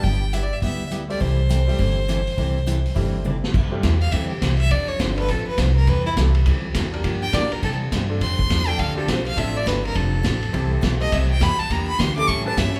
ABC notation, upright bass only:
X:1
M:4/4
L:1/8
Q:"Swing" 1/4=206
K:C
V:1 name="Upright bass" clef=bass
G,,,4 D,,4 | C,,4 G,,,4 | C,,4 G,,,4 | G,,2 E,,2 D,,2 C,,2 |
F,,,2 G,,,2 A,,, z C,,2 | E,,2 C,,2 D,,2 E,,2 | G,,2 _B,, z C,2 G,,2 | F,,2 E,,2 D,,2 B,,,2 |
A,,,2 G,,,2 F,,,2 A,,,2 | C,,2 B,,,2 C,,2 F,, z | E,,2 D,,2 A,,2 G,,2 |]